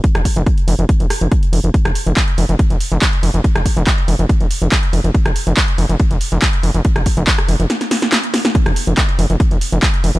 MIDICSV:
0, 0, Header, 1, 3, 480
1, 0, Start_track
1, 0, Tempo, 425532
1, 44, Time_signature, 4, 2, 24, 8
1, 11494, End_track
2, 0, Start_track
2, 0, Title_t, "Analog synth bass"
2, 0, Program_c, 0, 38
2, 170, Note_on_c, 0, 29, 76
2, 242, Note_off_c, 0, 29, 0
2, 410, Note_on_c, 0, 29, 81
2, 482, Note_off_c, 0, 29, 0
2, 763, Note_on_c, 0, 29, 97
2, 842, Note_off_c, 0, 29, 0
2, 889, Note_on_c, 0, 29, 85
2, 961, Note_off_c, 0, 29, 0
2, 1130, Note_on_c, 0, 29, 75
2, 1201, Note_off_c, 0, 29, 0
2, 1369, Note_on_c, 0, 29, 81
2, 1441, Note_off_c, 0, 29, 0
2, 1722, Note_on_c, 0, 29, 92
2, 1802, Note_off_c, 0, 29, 0
2, 1847, Note_on_c, 0, 29, 82
2, 1920, Note_off_c, 0, 29, 0
2, 2088, Note_on_c, 0, 29, 74
2, 2160, Note_off_c, 0, 29, 0
2, 2329, Note_on_c, 0, 29, 82
2, 2401, Note_off_c, 0, 29, 0
2, 2685, Note_on_c, 0, 29, 94
2, 2763, Note_off_c, 0, 29, 0
2, 2811, Note_on_c, 0, 29, 86
2, 2882, Note_off_c, 0, 29, 0
2, 3049, Note_on_c, 0, 29, 76
2, 3121, Note_off_c, 0, 29, 0
2, 3290, Note_on_c, 0, 29, 82
2, 3361, Note_off_c, 0, 29, 0
2, 3643, Note_on_c, 0, 29, 94
2, 3722, Note_off_c, 0, 29, 0
2, 3769, Note_on_c, 0, 29, 84
2, 3841, Note_off_c, 0, 29, 0
2, 4008, Note_on_c, 0, 29, 79
2, 4081, Note_off_c, 0, 29, 0
2, 4248, Note_on_c, 0, 29, 81
2, 4321, Note_off_c, 0, 29, 0
2, 4603, Note_on_c, 0, 29, 95
2, 4682, Note_off_c, 0, 29, 0
2, 4729, Note_on_c, 0, 29, 85
2, 4801, Note_off_c, 0, 29, 0
2, 4969, Note_on_c, 0, 29, 80
2, 5041, Note_off_c, 0, 29, 0
2, 5207, Note_on_c, 0, 29, 78
2, 5280, Note_off_c, 0, 29, 0
2, 5562, Note_on_c, 0, 29, 95
2, 5641, Note_off_c, 0, 29, 0
2, 5687, Note_on_c, 0, 29, 83
2, 5760, Note_off_c, 0, 29, 0
2, 5928, Note_on_c, 0, 29, 74
2, 6000, Note_off_c, 0, 29, 0
2, 6169, Note_on_c, 0, 29, 80
2, 6241, Note_off_c, 0, 29, 0
2, 6523, Note_on_c, 0, 29, 98
2, 6602, Note_off_c, 0, 29, 0
2, 6648, Note_on_c, 0, 29, 82
2, 6721, Note_off_c, 0, 29, 0
2, 6888, Note_on_c, 0, 29, 77
2, 6961, Note_off_c, 0, 29, 0
2, 7129, Note_on_c, 0, 29, 82
2, 7201, Note_off_c, 0, 29, 0
2, 7483, Note_on_c, 0, 29, 94
2, 7562, Note_off_c, 0, 29, 0
2, 7609, Note_on_c, 0, 29, 79
2, 7681, Note_off_c, 0, 29, 0
2, 7849, Note_on_c, 0, 29, 72
2, 7921, Note_off_c, 0, 29, 0
2, 8089, Note_on_c, 0, 29, 85
2, 8161, Note_off_c, 0, 29, 0
2, 8443, Note_on_c, 0, 29, 99
2, 8522, Note_off_c, 0, 29, 0
2, 8569, Note_on_c, 0, 29, 80
2, 8641, Note_off_c, 0, 29, 0
2, 9769, Note_on_c, 0, 29, 78
2, 9841, Note_off_c, 0, 29, 0
2, 10009, Note_on_c, 0, 29, 81
2, 10081, Note_off_c, 0, 29, 0
2, 10363, Note_on_c, 0, 29, 101
2, 10442, Note_off_c, 0, 29, 0
2, 10489, Note_on_c, 0, 29, 83
2, 10561, Note_off_c, 0, 29, 0
2, 10729, Note_on_c, 0, 29, 73
2, 10801, Note_off_c, 0, 29, 0
2, 10969, Note_on_c, 0, 29, 81
2, 11041, Note_off_c, 0, 29, 0
2, 11323, Note_on_c, 0, 29, 96
2, 11402, Note_off_c, 0, 29, 0
2, 11449, Note_on_c, 0, 29, 79
2, 11494, Note_off_c, 0, 29, 0
2, 11494, End_track
3, 0, Start_track
3, 0, Title_t, "Drums"
3, 43, Note_on_c, 9, 36, 127
3, 43, Note_on_c, 9, 42, 79
3, 156, Note_off_c, 9, 36, 0
3, 156, Note_off_c, 9, 42, 0
3, 170, Note_on_c, 9, 37, 96
3, 170, Note_on_c, 9, 42, 48
3, 283, Note_off_c, 9, 37, 0
3, 283, Note_off_c, 9, 42, 0
3, 284, Note_on_c, 9, 36, 62
3, 285, Note_on_c, 9, 46, 105
3, 396, Note_off_c, 9, 36, 0
3, 398, Note_off_c, 9, 46, 0
3, 411, Note_on_c, 9, 42, 50
3, 523, Note_off_c, 9, 42, 0
3, 524, Note_on_c, 9, 36, 119
3, 524, Note_on_c, 9, 42, 77
3, 637, Note_off_c, 9, 36, 0
3, 637, Note_off_c, 9, 42, 0
3, 650, Note_on_c, 9, 42, 51
3, 763, Note_off_c, 9, 42, 0
3, 764, Note_on_c, 9, 46, 97
3, 877, Note_off_c, 9, 46, 0
3, 890, Note_on_c, 9, 42, 52
3, 1003, Note_off_c, 9, 42, 0
3, 1004, Note_on_c, 9, 36, 127
3, 1004, Note_on_c, 9, 42, 83
3, 1117, Note_off_c, 9, 36, 0
3, 1117, Note_off_c, 9, 42, 0
3, 1130, Note_on_c, 9, 42, 53
3, 1243, Note_off_c, 9, 42, 0
3, 1245, Note_on_c, 9, 37, 85
3, 1245, Note_on_c, 9, 46, 111
3, 1357, Note_off_c, 9, 37, 0
3, 1357, Note_off_c, 9, 46, 0
3, 1370, Note_on_c, 9, 42, 52
3, 1482, Note_off_c, 9, 42, 0
3, 1484, Note_on_c, 9, 36, 126
3, 1484, Note_on_c, 9, 42, 78
3, 1597, Note_off_c, 9, 36, 0
3, 1597, Note_off_c, 9, 42, 0
3, 1610, Note_on_c, 9, 42, 52
3, 1723, Note_off_c, 9, 42, 0
3, 1725, Note_on_c, 9, 46, 97
3, 1838, Note_off_c, 9, 46, 0
3, 1851, Note_on_c, 9, 42, 52
3, 1964, Note_off_c, 9, 42, 0
3, 1964, Note_on_c, 9, 36, 120
3, 1965, Note_on_c, 9, 42, 75
3, 2077, Note_off_c, 9, 36, 0
3, 2078, Note_off_c, 9, 42, 0
3, 2091, Note_on_c, 9, 37, 96
3, 2091, Note_on_c, 9, 42, 49
3, 2204, Note_off_c, 9, 37, 0
3, 2204, Note_off_c, 9, 42, 0
3, 2204, Note_on_c, 9, 46, 102
3, 2317, Note_off_c, 9, 46, 0
3, 2330, Note_on_c, 9, 42, 51
3, 2443, Note_off_c, 9, 42, 0
3, 2444, Note_on_c, 9, 36, 115
3, 2445, Note_on_c, 9, 39, 112
3, 2445, Note_on_c, 9, 42, 72
3, 2557, Note_off_c, 9, 36, 0
3, 2558, Note_off_c, 9, 39, 0
3, 2558, Note_off_c, 9, 42, 0
3, 2569, Note_on_c, 9, 42, 48
3, 2682, Note_off_c, 9, 42, 0
3, 2684, Note_on_c, 9, 46, 90
3, 2797, Note_off_c, 9, 46, 0
3, 2810, Note_on_c, 9, 42, 48
3, 2923, Note_off_c, 9, 42, 0
3, 2924, Note_on_c, 9, 36, 123
3, 2924, Note_on_c, 9, 42, 76
3, 3037, Note_off_c, 9, 36, 0
3, 3037, Note_off_c, 9, 42, 0
3, 3050, Note_on_c, 9, 42, 50
3, 3163, Note_off_c, 9, 42, 0
3, 3164, Note_on_c, 9, 46, 106
3, 3277, Note_off_c, 9, 46, 0
3, 3290, Note_on_c, 9, 42, 50
3, 3403, Note_off_c, 9, 42, 0
3, 3404, Note_on_c, 9, 36, 116
3, 3405, Note_on_c, 9, 39, 114
3, 3405, Note_on_c, 9, 42, 73
3, 3517, Note_off_c, 9, 36, 0
3, 3518, Note_off_c, 9, 39, 0
3, 3518, Note_off_c, 9, 42, 0
3, 3530, Note_on_c, 9, 42, 50
3, 3643, Note_off_c, 9, 42, 0
3, 3645, Note_on_c, 9, 46, 90
3, 3757, Note_off_c, 9, 46, 0
3, 3770, Note_on_c, 9, 42, 50
3, 3883, Note_off_c, 9, 42, 0
3, 3883, Note_on_c, 9, 36, 113
3, 3884, Note_on_c, 9, 42, 78
3, 3996, Note_off_c, 9, 36, 0
3, 3997, Note_off_c, 9, 42, 0
3, 4011, Note_on_c, 9, 37, 95
3, 4011, Note_on_c, 9, 42, 51
3, 4123, Note_off_c, 9, 37, 0
3, 4123, Note_off_c, 9, 42, 0
3, 4123, Note_on_c, 9, 36, 60
3, 4124, Note_on_c, 9, 46, 95
3, 4236, Note_off_c, 9, 36, 0
3, 4237, Note_off_c, 9, 46, 0
3, 4250, Note_on_c, 9, 42, 50
3, 4363, Note_off_c, 9, 42, 0
3, 4363, Note_on_c, 9, 36, 116
3, 4365, Note_on_c, 9, 39, 114
3, 4365, Note_on_c, 9, 42, 74
3, 4476, Note_off_c, 9, 36, 0
3, 4478, Note_off_c, 9, 39, 0
3, 4478, Note_off_c, 9, 42, 0
3, 4491, Note_on_c, 9, 42, 48
3, 4603, Note_off_c, 9, 42, 0
3, 4604, Note_on_c, 9, 46, 89
3, 4717, Note_off_c, 9, 46, 0
3, 4729, Note_on_c, 9, 42, 49
3, 4842, Note_off_c, 9, 42, 0
3, 4843, Note_on_c, 9, 36, 119
3, 4845, Note_on_c, 9, 42, 77
3, 4956, Note_off_c, 9, 36, 0
3, 4957, Note_off_c, 9, 42, 0
3, 4969, Note_on_c, 9, 42, 49
3, 5082, Note_off_c, 9, 42, 0
3, 5083, Note_on_c, 9, 46, 105
3, 5196, Note_off_c, 9, 46, 0
3, 5209, Note_on_c, 9, 42, 50
3, 5322, Note_off_c, 9, 42, 0
3, 5323, Note_on_c, 9, 36, 118
3, 5323, Note_on_c, 9, 39, 122
3, 5323, Note_on_c, 9, 42, 74
3, 5436, Note_off_c, 9, 36, 0
3, 5436, Note_off_c, 9, 39, 0
3, 5436, Note_off_c, 9, 42, 0
3, 5448, Note_on_c, 9, 42, 54
3, 5561, Note_off_c, 9, 42, 0
3, 5563, Note_on_c, 9, 46, 89
3, 5676, Note_off_c, 9, 46, 0
3, 5690, Note_on_c, 9, 42, 47
3, 5802, Note_off_c, 9, 42, 0
3, 5803, Note_on_c, 9, 36, 119
3, 5804, Note_on_c, 9, 42, 77
3, 5916, Note_off_c, 9, 36, 0
3, 5917, Note_off_c, 9, 42, 0
3, 5929, Note_on_c, 9, 37, 92
3, 5929, Note_on_c, 9, 42, 48
3, 6042, Note_off_c, 9, 37, 0
3, 6042, Note_off_c, 9, 42, 0
3, 6043, Note_on_c, 9, 46, 98
3, 6156, Note_off_c, 9, 46, 0
3, 6169, Note_on_c, 9, 42, 51
3, 6281, Note_off_c, 9, 42, 0
3, 6283, Note_on_c, 9, 39, 118
3, 6283, Note_on_c, 9, 42, 77
3, 6284, Note_on_c, 9, 36, 112
3, 6396, Note_off_c, 9, 36, 0
3, 6396, Note_off_c, 9, 39, 0
3, 6396, Note_off_c, 9, 42, 0
3, 6409, Note_on_c, 9, 42, 53
3, 6522, Note_off_c, 9, 42, 0
3, 6523, Note_on_c, 9, 46, 87
3, 6636, Note_off_c, 9, 46, 0
3, 6649, Note_on_c, 9, 42, 52
3, 6762, Note_off_c, 9, 42, 0
3, 6763, Note_on_c, 9, 42, 81
3, 6764, Note_on_c, 9, 36, 116
3, 6875, Note_off_c, 9, 42, 0
3, 6877, Note_off_c, 9, 36, 0
3, 6889, Note_on_c, 9, 42, 52
3, 7001, Note_off_c, 9, 42, 0
3, 7002, Note_on_c, 9, 46, 104
3, 7115, Note_off_c, 9, 46, 0
3, 7128, Note_on_c, 9, 42, 52
3, 7241, Note_off_c, 9, 42, 0
3, 7243, Note_on_c, 9, 39, 121
3, 7243, Note_on_c, 9, 42, 76
3, 7244, Note_on_c, 9, 36, 118
3, 7355, Note_off_c, 9, 39, 0
3, 7355, Note_off_c, 9, 42, 0
3, 7357, Note_off_c, 9, 36, 0
3, 7368, Note_on_c, 9, 42, 55
3, 7481, Note_off_c, 9, 42, 0
3, 7483, Note_on_c, 9, 46, 87
3, 7596, Note_off_c, 9, 46, 0
3, 7608, Note_on_c, 9, 42, 51
3, 7720, Note_off_c, 9, 42, 0
3, 7723, Note_on_c, 9, 42, 80
3, 7725, Note_on_c, 9, 36, 117
3, 7835, Note_off_c, 9, 42, 0
3, 7837, Note_off_c, 9, 36, 0
3, 7849, Note_on_c, 9, 37, 87
3, 7849, Note_on_c, 9, 42, 52
3, 7961, Note_off_c, 9, 37, 0
3, 7961, Note_off_c, 9, 42, 0
3, 7963, Note_on_c, 9, 46, 100
3, 7965, Note_on_c, 9, 36, 61
3, 8076, Note_off_c, 9, 46, 0
3, 8077, Note_off_c, 9, 36, 0
3, 8089, Note_on_c, 9, 42, 52
3, 8202, Note_off_c, 9, 42, 0
3, 8204, Note_on_c, 9, 39, 119
3, 8204, Note_on_c, 9, 42, 80
3, 8205, Note_on_c, 9, 36, 111
3, 8317, Note_off_c, 9, 36, 0
3, 8317, Note_off_c, 9, 39, 0
3, 8317, Note_off_c, 9, 42, 0
3, 8330, Note_on_c, 9, 37, 83
3, 8330, Note_on_c, 9, 42, 52
3, 8443, Note_off_c, 9, 37, 0
3, 8443, Note_off_c, 9, 42, 0
3, 8443, Note_on_c, 9, 46, 91
3, 8556, Note_off_c, 9, 46, 0
3, 8570, Note_on_c, 9, 42, 51
3, 8683, Note_off_c, 9, 42, 0
3, 8684, Note_on_c, 9, 38, 64
3, 8684, Note_on_c, 9, 42, 79
3, 8797, Note_off_c, 9, 38, 0
3, 8797, Note_off_c, 9, 42, 0
3, 8810, Note_on_c, 9, 38, 56
3, 8810, Note_on_c, 9, 42, 54
3, 8922, Note_off_c, 9, 38, 0
3, 8922, Note_off_c, 9, 42, 0
3, 8924, Note_on_c, 9, 38, 74
3, 8924, Note_on_c, 9, 46, 101
3, 9037, Note_off_c, 9, 38, 0
3, 9037, Note_off_c, 9, 46, 0
3, 9049, Note_on_c, 9, 38, 68
3, 9049, Note_on_c, 9, 42, 52
3, 9162, Note_off_c, 9, 38, 0
3, 9162, Note_off_c, 9, 42, 0
3, 9163, Note_on_c, 9, 38, 89
3, 9163, Note_on_c, 9, 39, 122
3, 9163, Note_on_c, 9, 42, 82
3, 9276, Note_off_c, 9, 38, 0
3, 9276, Note_off_c, 9, 39, 0
3, 9276, Note_off_c, 9, 42, 0
3, 9290, Note_on_c, 9, 42, 55
3, 9402, Note_off_c, 9, 42, 0
3, 9404, Note_on_c, 9, 38, 96
3, 9404, Note_on_c, 9, 46, 87
3, 9517, Note_off_c, 9, 38, 0
3, 9517, Note_off_c, 9, 46, 0
3, 9529, Note_on_c, 9, 38, 84
3, 9529, Note_on_c, 9, 42, 53
3, 9642, Note_off_c, 9, 38, 0
3, 9642, Note_off_c, 9, 42, 0
3, 9644, Note_on_c, 9, 36, 123
3, 9644, Note_on_c, 9, 42, 85
3, 9757, Note_off_c, 9, 36, 0
3, 9757, Note_off_c, 9, 42, 0
3, 9770, Note_on_c, 9, 37, 85
3, 9770, Note_on_c, 9, 42, 54
3, 9882, Note_off_c, 9, 37, 0
3, 9882, Note_off_c, 9, 42, 0
3, 9884, Note_on_c, 9, 46, 102
3, 9997, Note_off_c, 9, 46, 0
3, 10009, Note_on_c, 9, 42, 52
3, 10122, Note_off_c, 9, 42, 0
3, 10123, Note_on_c, 9, 36, 113
3, 10124, Note_on_c, 9, 39, 121
3, 10124, Note_on_c, 9, 42, 81
3, 10236, Note_off_c, 9, 36, 0
3, 10236, Note_off_c, 9, 39, 0
3, 10236, Note_off_c, 9, 42, 0
3, 10250, Note_on_c, 9, 42, 55
3, 10362, Note_off_c, 9, 42, 0
3, 10364, Note_on_c, 9, 46, 92
3, 10477, Note_off_c, 9, 46, 0
3, 10489, Note_on_c, 9, 42, 54
3, 10602, Note_off_c, 9, 42, 0
3, 10603, Note_on_c, 9, 36, 126
3, 10603, Note_on_c, 9, 42, 82
3, 10716, Note_off_c, 9, 36, 0
3, 10716, Note_off_c, 9, 42, 0
3, 10729, Note_on_c, 9, 42, 54
3, 10842, Note_off_c, 9, 42, 0
3, 10844, Note_on_c, 9, 46, 106
3, 10957, Note_off_c, 9, 46, 0
3, 10969, Note_on_c, 9, 42, 54
3, 11082, Note_off_c, 9, 42, 0
3, 11083, Note_on_c, 9, 36, 122
3, 11084, Note_on_c, 9, 39, 122
3, 11084, Note_on_c, 9, 42, 82
3, 11196, Note_off_c, 9, 36, 0
3, 11197, Note_off_c, 9, 39, 0
3, 11197, Note_off_c, 9, 42, 0
3, 11210, Note_on_c, 9, 42, 57
3, 11323, Note_off_c, 9, 42, 0
3, 11324, Note_on_c, 9, 46, 92
3, 11437, Note_off_c, 9, 46, 0
3, 11449, Note_on_c, 9, 42, 54
3, 11494, Note_off_c, 9, 42, 0
3, 11494, End_track
0, 0, End_of_file